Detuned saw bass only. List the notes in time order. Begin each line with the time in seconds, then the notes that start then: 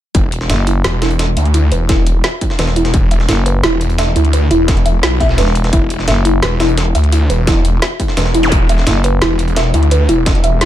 0.15 E1
0.85 E1
1.37 D2
1.72 E1
2.59 E1
2.94 E1
3.64 E1
4.16 D2
4.51 E1
5.03 B1
5.73 E1
6.43 E1
6.95 D2
7.30 E1
8.17 E1
8.52 E1
9.22 E1
9.74 D2
10.09 E1
10.61 E1